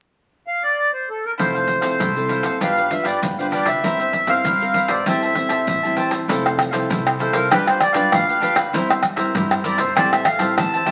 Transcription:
0.47 accordion F5
0.63 accordion D5
0.93 accordion C5
1.09 accordion A4
1.26 accordion A#4
1.38 upright bass F1, nylon-string guitar F3 C4 E4 A4, cavaquinho E4 A4 C5 F5, accordion C5, pandeiro, maracas, surdo
1.54 cavaquinho A4 C5 F5, pandeiro, maracas
1.68 muted cavaquinho stroke, pandeiro
1.81 upright bass F1, nylon-string guitar C4 E4 A4, cavaquinho A4 C5 F5, pandeiro, maracas, surdo
1.99 upright bass C2, nylon-string guitar C3, cavaquinho E4 A4 C5 F5, pandeiro, maracas, surdo
2.16 nylon-string guitar C4 E4 A4, pandeiro, maracas
2.28 cavaquinho E4 A4 C5 F5, pandeiro
2.43 upright bass F#1, cavaquinho A4 C5 F5, pandeiro, maracas, surdo
2.60 upright bass G1, nylon-string guitar G3 D4 F4 B4, cavaquinho D4 G4 B4 F5, accordion F5, pandeiro, maracas, surdo
2.77 cavaquinho G4 B4 F5, pandeiro, maracas
2.90 nylon-string guitar D4 F4 B4, accordion E5, muted cavaquinho stroke, pandeiro
3.03 upright bass G1, cavaquinho G4 B4 F5, accordion D5, pandeiro, maracas, surdo
3.22 upright bass G1, nylon-string guitar D3, pandeiro, maracas, surdo
3.39 nylon-string guitar D4 F4 B4, cavaquinho G4 B4 F5, accordion C5, pandeiro, maracas
3.51 cavaquinho D4 G4 B4 F5, accordion D5, pandeiro, maracas
3.65 upright bass D2, cavaquinho G4 B4 F5, accordion E5, pandeiro, maracas, surdo
3.83 upright bass G1, nylon-string guitar G3 C4 E4 A#4, cavaquinho E4 A#4 C5 E5, pandeiro, maracas, surdo
4.00 cavaquinho A#4 C5 E5, pandeiro, maracas
4.13 muted cavaquinho stroke, pandeiro, surdo
4.27 upright bass G1, nylon-string guitar C4 E4 A#4, cavaquinho A#4 C5 E5, accordion F5, pandeiro, maracas, surdo
4.44 upright bass G2, nylon-string guitar G3, cavaquinho E4 A#4 C5 E5, pandeiro, maracas, surdo
4.61 nylon-string guitar C4 A#4, pandeiro, maracas
4.74 cavaquinho E4 A#4 C5 E5, pandeiro
4.88 upright bass G#1, cavaquinho A#4 C5 E5, accordion D5, pandeiro, maracas, surdo
5.06 upright bass A1, nylon-string guitar A2 G3 C4 E4, cavaquinho G4 C5 E5 A5, accordion E5, pandeiro, maracas, surdo
5.22 cavaquinho C5 E5 A5, pandeiro, maracas
5.35 nylon-string guitar G3 C4 E4, muted cavaquinho stroke, pandeiro
5.49 upright bass A1, cavaquinho C5 E5 A5, pandeiro, maracas, surdo
5.67 upright bass A1, nylon-string guitar E3, pandeiro, maracas, surdo
5.83 nylon-string guitar G3 C4 E4, cavaquinho C5 E5 A5, pandeiro, maracas
5.96 cavaquinho G4 C5 E5 A5, pandeiro
6.10 upright bass G1, cavaquinho C5 E5 A5, pandeiro, maracas, surdo
6.28 upright bass F1, nylon-string guitar F3 C4 E4 A4, cavaquinho E4 A4 C5 F5, pandeiro, maracas, surdo
6.45 cavaquinho A4 C5 F5, pandeiro, tamborim, maracas
6.58 muted cavaquinho stroke, pandeiro, tamborim, maracas
6.71 upright bass C2, nylon-string guitar C4 E4 A4, cavaquinho A4 C5 F5, pandeiro, maracas, surdo
6.89 upright bass C2, nylon-string guitar C3, cavaquinho E4 A4 C5 F5, pandeiro, maracas, surdo
7.07 pandeiro, tamborim, maracas
7.19 nylon-string guitar C4 E4 A4, cavaquinho E4 A4 C5 F5, accordion C5, pandeiro
7.33 upright bass C2, cavaquinho A4 C5 F5, accordion A#4, pandeiro, maracas, surdo
7.50 upright bass G1, nylon-string guitar G3 D4 F4 B4, cavaquinho D4 G4 B4 F5, accordion B4, pandeiro, tamborim, maracas, surdo
7.66 cavaquinho G4 B4 F5, accordion C5, pandeiro, tamborim, maracas
7.81 accordion D5, pandeiro, tamborim, maracas
7.93 upright bass G2, nylon-string guitar D4 F4 B4, cavaquinho G4 B4 F5, pandeiro, maracas, surdo
8.12 upright bass D2, nylon-string guitar D3, accordion F5, pandeiro, tamborim, maracas, surdo
8.28 cavaquinho G4 B4 F5, pandeiro, maracas
8.41 cavaquinho D4 G4 B4 F5, nylon-string guitar D4 F4 B4, pandeiro
8.55 cavaquinho G4 B4 F5, pandeiro, tamborim, maracas, surdo
8.73 upright bass G1, nylon-string guitar G3 C4 E4 A#4, cavaquinho E4 A#4 C5 E5, pandeiro, maracas, surdo
8.89 cavaquinho A#4 C5 E5, pandeiro, tamborim, maracas
9.02 muted cavaquinho stroke, pandeiro, tamborim
9.16 upright bass G2, nylon-string guitar C4 E4 A#4, cavaquinho A#4 C5 E5, pandeiro, maracas, surdo
9.35 upright bass G2, nylon-string guitar G3, cavaquinho E4 A#4 C5 E5, pandeiro, maracas, surdo
9.51 pandeiro, tamborim, maracas
9.64 nylon-string guitar C4 E4 A#4, cavaquinho E4 A#4 C5 E5, accordion D5, pandeiro, maracas
9.78 upright bass G1, cavaquinho A#4 C5 E5, accordion C5, pandeiro, maracas, surdo
9.96 upright bass A1, nylon-string guitar A2 G3 C4 E4, cavaquinho G4 C5 E5 A5, accordion D5, pandeiro, tamborim, maracas, surdo
10.12 cavaquinho C5 E5 A5, accordion E5, pandeiro, tamborim, maracas
10.25 accordion F5, pandeiro, tamborim, maracas
10.39 upright bass A2, nylon-string guitar G3 C4 E4, cavaquinho C5 E5 A5, pandeiro, maracas, surdo
10.57 upright bass E2, nylon-string guitar E3, accordion A5, pandeiro, tamborim, maracas, surdo
10.73 cavaquinho C5 E5 A5, pandeiro, maracas
10.86 nylon-string guitar G3 C4 E4, cavaquinho G4 C5 E5 A5, pandeiro

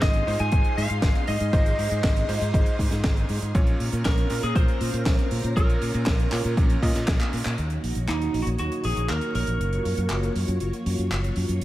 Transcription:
Already playing: electric grand piano G#2 G#3 D#4 F4 C5, string machine G#4 D#5 F5 C6
0.02 fingered electric bass G#1, lead electric guitar D#5, kick, snare, clap, closed hi-hat
0.13 closed hi-hat
0.27 electric grand piano G#2 G#3 D#4 F4 C5, fingered electric bass G#2, open hi-hat
0.39 fingered electric bass G#2, lead electric guitar G#5, closed hi-hat
0.52 fingered electric bass G#1, kick, closed hi-hat
0.64 closed hi-hat
0.77 fingered electric bass G#2, lead electric guitar F5, open hi-hat
0.90 fingered electric bass G#2, closed hi-hat
1.02 fingered electric bass G#1, kick, snare, clap, closed hi-hat
1.15 closed hi-hat
1.27 fingered electric bass G#2, lead electric guitar D#5, open hi-hat
1.40 fingered electric bass G#2, closed hi-hat
1.53 fingered electric bass G#1, electric grand piano G#2 G#3 D#4 F4 C5, kick, closed hi-hat
1.66 closed hi-hat
1.78 fingered electric bass G#2, open hi-hat
1.91 fingered electric bass G#2, closed hi-hat
2.04 fingered electric bass G#1, kick, snare, clap, closed hi-hat
2.16 closed hi-hat
2.29 electric grand piano G#2 G#3 D#4 F4 C5, fingered electric bass G#2, open hi-hat
2.41 fingered electric bass G#2, closed hi-hat
2.54 fingered electric bass G#1, kick, closed hi-hat
2.66 closed hi-hat
2.79 fingered electric bass G#2, kick, open hi-hat
2.91 fingered electric bass G#2, snare, closed hi-hat
3.04 fingered electric bass G#1, kick, snare, clap, closed hi-hat
3.17 closed hi-hat
3.29 fingered electric bass G#2, open hi-hat
3.42 fingered electric bass G#2, closed hi-hat
3.55 fingered electric bass A#1, electric grand piano A#2 A#3 C#4 F4 C#5, string machine C#4 A#4 F5 A#5, kick, closed hi-hat
3.67 closed hi-hat
3.80 fingered electric bass A#2, open hi-hat
3.92 fingered electric bass A#2, closed hi-hat
4.04 fingered electric bass A#1, lead electric guitar A#4, kick, snare, clap, closed hi-hat
4.18 closed hi-hat
4.30 electric grand piano A#2 A#3 C#4 F4 A#4, fingered electric bass A#2, open hi-hat
4.43 fingered electric bass A#2, lead electric guitar G#4, closed hi-hat
4.56 fingered electric bass A#1, lead electric guitar C5, kick, closed hi-hat
4.68 closed hi-hat
4.81 fingered electric bass A#2, open hi-hat
4.94 fingered electric bass A#2, closed hi-hat
5.06 fingered electric bass A#1, kick, snare, clap, closed hi-hat
5.19 closed hi-hat
5.31 fingered electric bass A#2, open hi-hat
5.44 fingered electric bass A#2, closed hi-hat
5.56 fingered electric bass A#1, electric grand piano A#2 A#3 C#4 F4 C#5, lead electric guitar A#4, kick, closed hi-hat
5.70 closed hi-hat
5.82 fingered electric bass A#2, open hi-hat
5.94 fingered electric bass A#2, closed hi-hat
6.06 fingered electric bass A#1, kick, snare, clap, closed hi-hat
6.20 closed hi-hat
6.32 electric grand piano A#2 A#3 C#4 F4 C#5, fingered electric bass A#2, clap, open hi-hat
6.44 fingered electric bass A#2, closed hi-hat
6.57 fingered electric bass A#1, kick, closed hi-hat
6.70 closed hi-hat
6.82 electric grand piano A#2 A#3 C#4 F4 D#5, fingered electric bass A#2, kick, open hi-hat
6.95 fingered electric bass A#2, snare, closed hi-hat
7.07 fingered electric bass A#1, kick, snare, clap, closed hi-hat
7.20 clap, closed hi-hat
7.33 fingered electric bass A#2, open hi-hat
7.45 fingered electric bass A#2, clap, closed hi-hat
7.58 fingered electric bass D#2, string machine A#3 D#4 F#4 C#5, closed hi-hat
7.70 closed hi-hat
7.84 fingered electric bass A#1, open hi-hat
7.95 fingered electric bass A#1, closed hi-hat
8.08 fingered electric bass D#2, lead electric guitar D#4, clap, closed hi-hat
8.22 closed hi-hat
8.34 fingered electric bass A#1, open hi-hat
8.42 fingered electric bass A#1, lead electric guitar F#4
8.47 closed hi-hat
8.59 fingered electric bass D#2, lead electric guitar F#4, closed hi-hat
8.72 closed hi-hat
8.84 fingered electric bass A#1, lead electric guitar G#4, open hi-hat
8.97 fingered electric bass A#1, closed hi-hat
9.09 fingered electric bass D#2, lead electric guitar A#4, clap, closed hi-hat
9.21 closed hi-hat
9.35 fingered electric bass A#1, lead electric guitar A#4, open hi-hat
9.47 fingered electric bass A#1, closed hi-hat
9.60 fingered electric bass F#1, string machine F4 F#4, closed hi-hat
9.73 closed hi-hat
9.85 fingered electric bass F#2, open hi-hat
9.98 fingered electric bass F#2, closed hi-hat
10.10 fingered electric bass F#1, clap, closed hi-hat
10.23 closed hi-hat
10.36 fingered electric bass F#2, open hi-hat
10.48 fingered electric bass F#2, closed hi-hat
10.60 fingered electric bass F#1, closed hi-hat
10.73 closed hi-hat
10.86 fingered electric bass F#2, open hi-hat
10.98 fingered electric bass F#2, closed hi-hat
11.11 fingered electric bass F#1, clap, closed hi-hat
11.24 closed hi-hat
11.36 fingered electric bass F#2, open hi-hat
11.49 fingered electric bass F#2, closed hi-hat

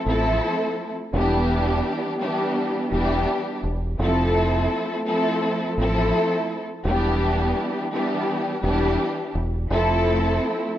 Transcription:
0.06 fingered electric bass A1, string section F3 A3 C4 E4 A4
1.13 fingered electric bass E1, string section E3 G3 B3 D4 G4
2.20 string section E3 G3 B3 D4 G4
2.90 fingered electric bass E1, string section E3 G3 B3 D4 G4
3.63 fingered electric bass E1
3.99 fingered electric bass F1, string section F3 A3 C4 E4 A4
5.06 string section F3 A3 C4 E4 A4
5.78 fingered electric bass A1, string section F3 A3 C4 E4 A4
6.85 fingered electric bass E1, string section E3 G3 B3 D4 G4
7.92 string section E3 G3 B3 D4 G4
8.61 fingered electric bass E1, string section E3 G3 B3 D4 G4
9.35 fingered electric bass E1
9.71 fingered electric bass F1, string section F3 A3 C4 E4 A4

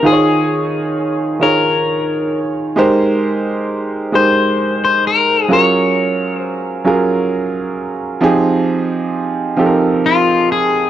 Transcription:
0.03 grand piano D#3 D#4 F4 G#4 C5, clean electric guitar G#4
0.13 grand piano C#5
1.39 grand piano D#3 D#4 F4 G#4 C#5, clean electric guitar A#4
2.76 grand piano G#3 D#4 G4 A#4 C5
4.12 grand piano G#3 D#4 G4 A#4 C5, clean electric guitar C5
4.85 clean electric guitar C5
5.07 clean electric guitar A#4
5.48 grand piano F#3 C#4 F4 G#4 A#4
5.53 clean electric guitar C#5
6.38 clean electric guitar C5
6.84 grand piano F#3 C#4 F4 G#4 A#4
8.21 grand piano F3 C4 D#4 G4 G#4
9.57 grand piano F3 C4 D#4 G4 A4
9.66 grand piano A#4
10.06 clean electric guitar F4
10.52 clean electric guitar G#4

